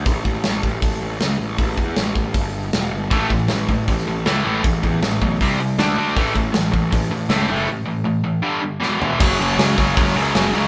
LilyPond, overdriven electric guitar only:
\new Staff \with { instrumentName = "Overdriven electric guitar" } { \clef bass \time 4/4 \key a \mixolydian \tempo 4 = 157 r1 | r1 | <a, e a>8 <a, e>8 <a, e>8 <a, e>8 <a, e>8 <a, e>8 <a, e a>8 <a, e a>8 | <a, e>8 <a, e>8 <a, e>8 <a, e>8 <c g c'>8 <c g>8 <d a d'>8 <d a d'>8 |
<a, e a>8 <a, e>8 <a, e>8 <a, e>8 <a, e>8 <a, e>8 <a, e a>8 <a, e a>8 | <a, e>8 <a, e>8 <a, e>8 <a, e>8 <g, d g>8 <g, d>8 <e, b, e>8 <e, b, e>8 | <fis, cis fis>8 <fis, cis fis>8 <fis, cis fis>8 <fis, cis fis>8 <fis, cis fis>8 <fis, cis fis>8 <fis, cis fis>8 <fis, cis fis>8 | }